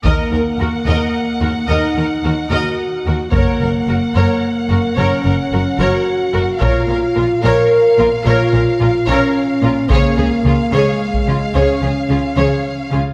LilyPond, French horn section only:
\new Staff \with { instrumentName = "French horn section" } { \time 6/8 \key ees \minor \tempo 4. = 73 bes2. | ees'4. ges'4. | bes2. | des'4. ges'4. |
r4. bes'4. | f'4. des'4. | bes4. aes4. | des'2~ des'8 r8 | }